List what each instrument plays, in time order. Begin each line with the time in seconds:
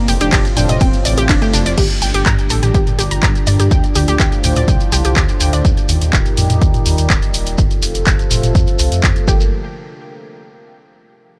Already playing: analog synth pad A2 C3 F3 C4 F4, analog synth lead A#3
0.08 detuned saw bass F1, synth arpeggio sound G4, open hi-hat, shekere
0.21 detuned saw bass F1, analog synth lead D4, synth arpeggio sound G4, closed hi-hat, shekere
0.32 detuned saw bass F1, synth arpeggio sound G4, kick, clap, closed hi-hat, ride, shekere
0.45 closed hi-hat, shekere
0.57 detuned saw bass F1, analog synth lead D4, synth arpeggio sound G5, open hi-hat, mid tom, shekere
0.69 detuned saw bass F1, synth arpeggio sound D#5, closed hi-hat, mid tom, shekere
0.80 detuned saw bass D#1, analog synth lead C4, synth arpeggio sound G5, kick, closed hi-hat, ride, shekere
0.93 closed hi-hat, shekere
1.05 detuned saw bass A1, synth arpeggio sound D5, open hi-hat, shekere
1.17 detuned saw bass A1, synth arpeggio sound G4, closed hi-hat, shekere
1.29 detuned saw bass F1, synth arpeggio sound D4, kick, clap, closed hi-hat, ride, shekere
1.42 analog synth lead A3, synth arpeggio sound G4, closed hi-hat, shekere
1.54 detuned saw bass F1, synth arpeggio sound D4, open hi-hat, shekere
1.66 detuned saw bass F1, synth arpeggio sound D5, closed hi-hat, shekere
1.78 detuned saw bass G1, analog synth pad A#2 D3 G3 D4 G4, synth arpeggio sound G4, kick, closed hi-hat, crash, shekere
1.90 closed hi-hat, shekere
2.02 detuned saw bass G1, synth arpeggio sound G5, open hi-hat, shekere
2.14 detuned saw bass G1, synth arpeggio sound G4, closed hi-hat, shekere
2.26 detuned saw bass G2, synth arpeggio sound A#5, kick, clap, closed hi-hat, shekere
2.39 closed hi-hat, shekere
2.50 detuned saw bass A1, synth arpeggio sound A4, open hi-hat, mid tom, shekere
2.63 detuned saw bass A1, synth arpeggio sound G4, closed hi-hat, mid tom, shekere
2.74 detuned saw bass G1, synth arpeggio sound G4, kick, closed hi-hat, shekere
2.87 closed hi-hat, mid tom, shekere
2.99 detuned saw bass G1, synth arpeggio sound G4, open hi-hat, shekere
3.11 detuned saw bass G1, synth arpeggio sound A#5, closed hi-hat, shekere
3.23 detuned saw bass G2, synth arpeggio sound A#5, kick, clap, closed hi-hat, shekere
3.35 closed hi-hat, shekere
3.47 detuned saw bass G2, synth arpeggio sound D5, open hi-hat, shekere
3.60 detuned saw bass G2, synth arpeggio sound G4, closed hi-hat, shekere
3.71 detuned saw bass D2, analog synth pad A2 F3 F4, synth arpeggio sound G5, kick, closed hi-hat, shekere
3.84 closed hi-hat, shekere
3.95 detuned saw bass D2, synth arpeggio sound G4, open hi-hat, shekere
4.08 detuned saw bass D2, synth arpeggio sound G4, closed hi-hat, shekere
4.20 detuned saw bass D2, synth arpeggio sound G4, kick, clap, closed hi-hat, shekere
4.32 closed hi-hat, shekere
4.44 detuned saw bass D2, synth arpeggio sound G5, open hi-hat, mid tom, shekere
4.56 detuned saw bass D2, synth arpeggio sound D5, closed hi-hat, mid tom, shekere
4.68 detuned saw bass C2, synth arpeggio sound G5, kick, closed hi-hat, shekere
4.80 closed hi-hat, shekere
4.92 detuned saw bass C2, synth arpeggio sound G4, open hi-hat, shekere
5.05 detuned saw bass C2, synth arpeggio sound G4, closed hi-hat, shekere
5.16 detuned saw bass D2, synth arpeggio sound G4, kick, clap, closed hi-hat, shekere
5.29 closed hi-hat, shekere
5.40 detuned saw bass D2, synth arpeggio sound G5, open hi-hat, shekere
5.53 detuned saw bass D2, synth arpeggio sound D5, closed hi-hat, shekere
5.65 detuned saw bass D#2, analog synth pad A#2 D#3 G3 D#4 G4, kick, closed hi-hat, shekere
5.77 closed hi-hat, shekere
5.89 detuned saw bass D#2, open hi-hat, shekere
6.02 detuned saw bass D#2, closed hi-hat, shekere
6.13 detuned saw bass D#1, kick, clap, closed hi-hat, shekere
6.25 closed hi-hat, shekere
6.37 detuned saw bass F2, open hi-hat, mid tom, shekere
6.50 detuned saw bass F2, closed hi-hat, mid tom, shekere
6.62 detuned saw bass D#2, kick, closed hi-hat, shekere
6.74 closed hi-hat, mid tom, shekere
6.86 detuned saw bass D#2, open hi-hat, shekere
6.98 detuned saw bass D#2, closed hi-hat, shekere
7.10 detuned saw bass D#1, kick, clap, closed hi-hat, shekere
7.22 closed hi-hat, shekere
7.34 detuned saw bass D#1, open hi-hat, shekere
7.46 detuned saw bass D#1, closed hi-hat, shekere
7.58 detuned saw bass F1, analog synth pad C3 F3 A3 F4 A4, kick, closed hi-hat, shekere
7.71 closed hi-hat, shekere
7.82 detuned saw bass F1, open hi-hat, shekere
7.95 detuned saw bass F1, closed hi-hat, shekere
8.06 kick, clap, closed hi-hat, shekere
8.19 closed hi-hat, shekere
8.31 detuned saw bass F1, open hi-hat, mid tom, shekere
8.43 detuned saw bass F1, closed hi-hat, mid tom, shekere
8.55 detuned saw bass F2, kick, closed hi-hat, shekere
8.67 closed hi-hat, shekere
8.79 detuned saw bass C2, open hi-hat, shekere
8.92 detuned saw bass F2, closed hi-hat, shekere
9.03 kick, clap, closed hi-hat, shekere
9.16 closed hi-hat, shekere
9.28 detuned saw bass G1, analog synth pad D3 G3 A#3 G4 A#4, synth arpeggio sound G4, kick, shekere
9.41 shekere